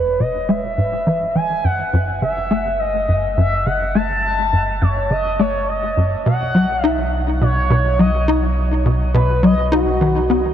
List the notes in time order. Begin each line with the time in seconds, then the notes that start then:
Already playing: E1 E2 B4
0.20 B2 D#5
0.48 G#3 E5
0.78 G#2
1.07 E3
1.35 E3 G#5
1.64 F#1 F#2 F#5
1.93 F#2
2.22 C#3 E5
2.51 A3
2.79 D#5
3.08 F#2
3.37 F#2 E5
3.66 C#3 F#5
3.95 A3 A5
4.53 F#2
4.81 F#2 C#5
5.10 C#3 D#5
5.39 A3 C#5
5.68 D#5
5.97 F#2
6.25 B1 B2 F#5
6.55 F#3
6.84 D#4 E5
7.41 B2 C#5
7.70 B2
7.99 F#3 D#5
8.28 D#4
8.86 B2
9.14 B2 B4
9.43 F#3 D#5
9.72 D#4 F#4
10.01 D#3
10.30 B3